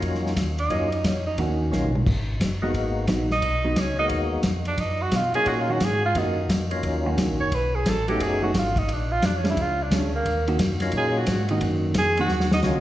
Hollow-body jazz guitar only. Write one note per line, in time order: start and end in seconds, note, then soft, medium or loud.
1.39 1.90 D#3 medium
1.39 1.90 A#3 medium
1.39 1.91 C#4 medium
1.39 1.91 F#4 medium
2.63 2.74 F#3 medium
2.63 2.74 B3 medium
2.63 2.74 D#4 medium
3.08 3.28 F#3 medium
3.08 3.28 B3 medium
3.08 3.29 D#4 medium
3.65 3.75 F#3 medium
3.65 3.76 B3 medium
3.65 3.76 D#4 medium
5.70 5.80 D#3 medium
5.70 5.80 A#3 soft
5.70 5.81 C#4 medium
5.70 5.81 F#4 medium
6.16 6.35 D#3 soft
6.16 6.36 A#3 medium
6.16 6.36 C#4 medium
6.16 6.36 F#4 medium
7.06 7.49 D#3 medium
7.06 7.50 A#3 medium
7.06 7.50 C#4 medium
7.06 7.50 F#4 medium
8.08 8.19 F#3 medium
8.08 8.20 A3 medium
8.08 8.20 D#4 medium
8.42 8.53 F#3 medium
8.42 8.53 A3 medium
8.42 8.54 D#4 medium
9.44 9.55 G#3 medium
9.44 9.56 C#4 medium
9.44 9.56 D4 medium
9.92 10.11 G#3 medium
9.92 10.12 C#4 medium
9.92 10.12 D4 medium
10.48 10.58 D#3 medium
10.48 10.58 A#3 medium
10.48 10.59 C#4 medium
10.48 10.59 F#4 medium
11.51 11.94 D#3 medium
11.51 11.94 A#3 medium
11.51 11.94 C#4 medium
11.51 11.94 F#4 medium
12.19 12.29 D#3 medium
12.19 12.29 A#3 medium
12.19 12.29 C#4 medium
12.19 12.30 F#4 medium
12.64 12.80 D#3 medium
12.64 12.80 A#3 medium
12.64 12.80 C#4 medium
12.64 12.80 F#4 medium